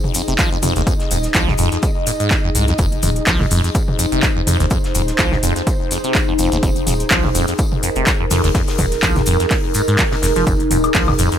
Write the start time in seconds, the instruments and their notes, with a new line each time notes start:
Already playing: ambient pad D#4 G#4 D#5
0.04 mid tom
0.14 acid bass F2, open hi-hat, tambourine, maracas
0.28 sub bass F1, acid bass C3, closed hi-hat, maracas
0.39 acid bass F3, kick, snare, clap, closed hi-hat, tambourine, maracas
0.52 acid bass F2
0.62 acid bass F2, mid tom, open hi-hat, tambourine, maracas
0.76 sub bass F1, acid bass D#2, snare, closed hi-hat, maracas
0.87 acid bass F2, kick, closed hi-hat, tambourine, maracas
1.00 snare, closed hi-hat
1.11 sub bass D#1, acid bass F2, open hi-hat, tambourine, maracas
1.23 snare, closed hi-hat, maracas
1.34 sub bass C2, acid bass F3, kick, snare, clap, closed hi-hat, tambourine, maracas
1.48 acid bass F2, snare, mid tom
1.58 sub bass D#1, acid bass F2, open hi-hat, tambourine, maracas
1.72 acid bass F2, snare, closed hi-hat, maracas
1.83 kick, closed hi-hat, tambourine, maracas
2.07 acid bass A#2, open hi-hat, tambourine, maracas
2.20 acid bass G#2, closed hi-hat, maracas
2.31 acid bass F2, kick, snare, clap, closed hi-hat, tambourine, maracas
2.44 acid bass F2
2.55 sub bass C2, acid bass G#2, open hi-hat, tambourine, maracas
2.67 acid bass F2, snare, closed hi-hat, maracas
2.78 sub bass F1, acid bass F2, kick, closed hi-hat, tambourine, maracas
2.92 closed hi-hat
3.02 sub bass D#1, acid bass F2, mid tom, open hi-hat, tambourine, maracas
3.16 closed hi-hat, maracas
3.27 sub bass C2, acid bass F3, kick, snare, clap, closed hi-hat, open hi-hat, maracas
3.40 acid bass F2, ambient pad C5, snare, mid tom
3.50 sub bass D#1, acid bass F2, open hi-hat, tambourine, maracas
3.64 acid bass F2, snare, closed hi-hat, maracas
3.75 kick, closed hi-hat, tambourine, maracas
3.88 mid tom
3.99 acid bass F2, open hi-hat, tambourine, maracas
4.12 sub bass F1, acid bass C3, closed hi-hat, maracas
4.23 acid bass F2, kick, snare, clap, closed hi-hat, tambourine, maracas
4.36 acid bass F2
4.47 acid bass F2, mid tom, open hi-hat, tambourine, maracas
4.60 sub bass F1, acid bass D#2, snare, closed hi-hat, maracas
4.70 acid bass F2, kick, closed hi-hat, tambourine, maracas
4.84 snare, closed hi-hat
4.94 sub bass D#1, acid bass F2, open hi-hat, tambourine, maracas
5.08 snare, closed hi-hat, maracas
5.18 sub bass C2, acid bass F3, kick, snare, clap, closed hi-hat, tambourine, maracas
5.32 acid bass F2, snare, mid tom
5.43 sub bass D#1, acid bass F2, open hi-hat, tambourine, maracas
5.56 acid bass F2, snare, closed hi-hat, maracas
5.67 kick, closed hi-hat, tambourine, maracas
5.91 acid bass F2, open hi-hat, tambourine, maracas
6.04 acid bass C3, closed hi-hat, maracas
6.15 acid bass F2, kick, snare, clap, closed hi-hat, tambourine, maracas
6.28 acid bass F2
6.39 sub bass F1, acid bass F2, open hi-hat, tambourine, maracas
6.52 sub bass F1, acid bass D#2, snare, closed hi-hat, maracas
6.63 sub bass F1, acid bass F2, kick, closed hi-hat, tambourine, maracas
6.76 closed hi-hat
6.87 sub bass D#1, acid bass F2, mid tom, open hi-hat, tambourine, maracas
7.00 closed hi-hat, maracas
7.10 sub bass C2, acid bass F3, kick, snare, clap, closed hi-hat, open hi-hat, maracas
7.24 acid bass F2, ambient pad A#4, snare, mid tom
7.35 sub bass D#1, acid bass F2, open hi-hat, tambourine, maracas
7.47 acid bass F2, snare, closed hi-hat, maracas
7.58 kick, closed hi-hat, tambourine, maracas
7.72 mid tom
7.83 acid bass F2, open hi-hat, tambourine, maracas
7.95 sub bass F1, acid bass C3, closed hi-hat, maracas
8.06 acid bass F2, kick, snare, clap, closed hi-hat, tambourine, maracas
8.20 acid bass F2
8.31 acid bass F2, snare, mid tom, open hi-hat, maracas
8.44 sub bass F1, acid bass D#2, snare, closed hi-hat, open hi-hat, maracas
8.55 acid bass F2, kick, snare, closed hi-hat, open hi-hat, maracas
8.67 snare, closed hi-hat, open hi-hat, maracas
8.78 sub bass D#1, acid bass F2, kick, mid tom, open hi-hat, tambourine, maracas
8.91 snare, closed hi-hat, maracas
9.03 sub bass C2, acid bass F3, kick, snare, clap, closed hi-hat, tambourine, maracas
9.16 acid bass F2, snare, mid tom, maracas
9.26 sub bass D#1, acid bass F2, open hi-hat, tambourine, maracas
9.40 acid bass F2, snare, closed hi-hat, maracas
9.50 kick, snare, clap, closed hi-hat, open hi-hat, maracas
9.74 acid bass G#2, open hi-hat, tambourine, maracas
9.88 acid bass G#2, closed hi-hat, maracas
9.99 kick, snare, clap, closed hi-hat, open hi-hat, maracas
10.12 acid bass C3, snare, open hi-hat
10.22 sub bass F1, acid bass F2, snare, open hi-hat, maracas
10.35 sub bass F1, acid bass F3, snare, closed hi-hat, maracas
10.47 sub bass F1, acid bass F2, kick, closed hi-hat, tambourine, maracas
10.60 closed hi-hat
10.71 sub bass D#1, acid bass F2, mid tom, open hi-hat, tambourine, maracas
10.84 closed hi-hat, high woodblock, maracas
10.94 sub bass C2, acid bass F3, kick, snare, clap, closed hi-hat, open hi-hat, maracas
11.08 acid bass F2, ambient pad C5, snare, mid tom, high woodblock
11.19 sub bass D#1, acid bass F2, open hi-hat, tambourine, maracas
11.32 acid bass F2, snare, closed hi-hat, maracas